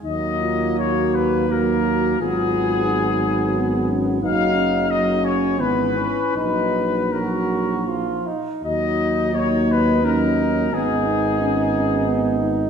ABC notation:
X:1
M:3/4
L:1/8
Q:1/4=86
K:Ebm
V:1 name="Trumpet section"
e2 d c B2 | A4- A z | f2 e d =B2 | c2 B2 z2 |
e2 d c B2 | A4- A z |]
V:2 name="Euphonium"
E F G2 G2 | F2 E2 C D | E D3 =B, =E | E4- E z |
G2 B,2 D2 | C E D2 C E |]
V:3 name="Flugelhorn"
B,4 B,2 | C6 | E2 E D =B, D | E z G2 F E |
E4 E2 | E6 |]
V:4 name="Trombone" clef=bass
G,4 G,2 | G,6 | G,2 G,2 =E, z | G,2 G,2 F, z |
G,4 G,2 | C6 |]
V:5 name="Tuba" clef=bass
E,,6 | A,,,6 | G,,,4 ^G,,, z | B,,,4- B,,, z |
E,,6 | A,,,6 |]